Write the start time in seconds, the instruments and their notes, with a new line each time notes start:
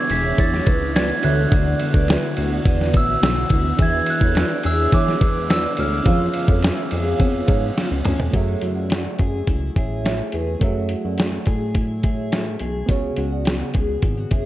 Already playing: steel-string acoustic guitar E3 B3 D4, ambient pad G#3 D4 E4, reed electric piano D4 E4 G#4 B4 E5
0.10 analog synth bass E1, steel-string acoustic guitar G#4, glockenspiel B6, ride
0.24 vibraphone C#5 E5
0.38 analog synth bass E2, steel-string acoustic guitar B3, vibraphone G#4 C#5, glockenspiel A6, kick, ride
0.54 snare
0.66 analog synth bass C#2, steel-string acoustic guitar D4, vibraphone G#4 B4, kick, ride
0.94 steel-string acoustic guitar B3, vibraphone B4 D5, glockenspiel G#6, snare, ride
1.21 analog synth bass D2, steel-string acoustic guitar D3, ambient pad E3 B3 F#4, reed electric piano D4 F#4 A4 B4, vibraphone A4 C#5, glockenspiel F#6, ride
1.26 reed electric piano E5
1.52 analog synth bass D2, steel-string acoustic guitar D3, vibraphone D5 F#5, kick, ride
1.79 steel-string acoustic guitar B3, ride
1.94 analog synth bass D2, vibraphone B4 D5, kick
2.08 steel-string acoustic guitar E4, vibraphone B4 E5, snare, ride
2.37 analog synth bass D2, steel-string acoustic guitar F#4, ride
2.52 vibraphone D5 F#5
2.65 analog synth bass E2, steel-string acoustic guitar B3, vibraphone B4 D5, kick, ride
2.81 snare
2.94 analog synth bass A1, steel-string acoustic guitar E4, vibraphone C#5 E5, glockenspiel E6, kick, ride
3.22 analog synth bass B1, steel-string acoustic guitar B3, glockenspiel E6, snare, ride
3.49 analog synth bass D2, steel-string acoustic guitar E4, kick, ride
3.77 analog synth bass E2, ambient pad D3 G#3 E4, steel-string acoustic guitar E3, reed electric piano D4 E4 G#4 B4, vibraphone B4 E5, kick, ride
3.82 reed electric piano E5, glockenspiel G#6
4.06 steel-string acoustic guitar B3, glockenspiel F#6, ride
4.21 analog synth bass E2, vibraphone A4 C#5, kick
4.35 steel-string acoustic guitar D4, vibraphone B4, snare, ride
4.63 analog synth bass E2, steel-string acoustic guitar G#4, glockenspiel E6, ride
4.80 vibraphone C#5 E5
4.92 analog synth bass E3, steel-string acoustic guitar B3, vibraphone G#4 C#5, glockenspiel D6, kick, ride
5.08 snare
5.21 analog synth bass E2, steel-string acoustic guitar D4, vibraphone G#4 B4, kick, ride
5.50 steel-string acoustic guitar B3, vibraphone B4 D5, glockenspiel E6, snare, ride
5.77 analog synth bass D2, steel-string acoustic guitar D4, vibraphone A4 C#5, glockenspiel F6, ride
6.03 analog synth bass F2, ambient pad C#3 B3 F4, steel-string acoustic guitar F3, reed electric piano C#4 F4 G#4 B4, vibraphone C#5 F5, kick, ride
6.09 reed electric piano F5
6.34 steel-string acoustic guitar B3, ride
6.48 analog synth bass F2, vibraphone A4 C#5, kick
6.62 steel-string acoustic guitar C#4, vibraphone E5, snare, ride
6.91 analog synth bass F2, steel-string acoustic guitar G#4, ride
7.05 vibraphone C#5 F5
7.20 analog synth bass F2, steel-string acoustic guitar B3, vibraphone G#4 C#5, kick, ride
7.46 analog synth bass G#2, steel-string acoustic guitar C#4, vibraphone C#5 F5, kick, ride
7.77 steel-string acoustic guitar B3, snare, ride
7.91 analog synth bass C#2
8.05 analog synth bass D2, steel-string acoustic guitar C#4, mid tom, ride
8.20 analog synth bass F2, floor tom
8.31 analog synth bass F#2, steel-string acoustic guitar F#3, reed electric piano A3 F#4 G#4, vibraphone A4 C#5, kick, closed hi-hat
8.36 reed electric piano E5
8.61 analog synth bass F#2, steel-string acoustic guitar E4, closed hi-hat
8.75 vibraphone D5 F#5
8.90 steel-string acoustic guitar A3, snare, closed hi-hat
9.19 analog synth bass F#2, steel-string acoustic guitar G#4, kick, closed hi-hat
9.47 analog synth bass C#2, steel-string acoustic guitar E4, kick, closed hi-hat
9.76 analog synth bass A1, steel-string acoustic guitar G#4, vibraphone C#5 E5, kick, closed hi-hat
10.04 steel-string acoustic guitar A3, vibraphone C#5 E5, snare, closed hi-hat
10.32 analog synth bass E2, steel-string acoustic guitar G#4, vibraphone G#4 B4, closed hi-hat
10.59 analog synth bass F#2, steel-string acoustic guitar F#3, reed electric piano A3 F#4 G#4, vibraphone A4 C#5, kick, closed hi-hat
10.64 reed electric piano E5
10.89 steel-string acoustic guitar E4, closed hi-hat
11.04 analog synth bass F#2, vibraphone D5 F#5
11.18 steel-string acoustic guitar A3, snare, closed hi-hat
11.46 analog synth bass A2, steel-string acoustic guitar G#4, kick, closed hi-hat
11.75 steel-string acoustic guitar E4, kick, closed hi-hat
12.03 steel-string acoustic guitar G#4, vibraphone C#5 E5, kick, closed hi-hat
12.31 steel-string acoustic guitar A3, snare, closed hi-hat
12.59 analog synth bass B1, steel-string acoustic guitar G#4, closed hi-hat
12.86 analog synth bass C#2, steel-string acoustic guitar C#3, reed electric piano B3 F#4 G#4, vibraphone G#4 C#5, kick, closed hi-hat
12.91 reed electric piano C#5
13.16 analog synth bass C#2, steel-string acoustic guitar F#4, closed hi-hat
13.32 vibraphone D5 F#5
13.45 steel-string acoustic guitar B3, snare, closed hi-hat
13.74 analog synth bass C#2, steel-string acoustic guitar G#4, kick, closed hi-hat
14.02 analog synth bass G#1, steel-string acoustic guitar E4, kick, closed hi-hat
14.17 steel-string acoustic guitar F#4
14.31 analog synth bass F#1, steel-string acoustic guitar G#4, vibraphone C#5 E5, kick, closed hi-hat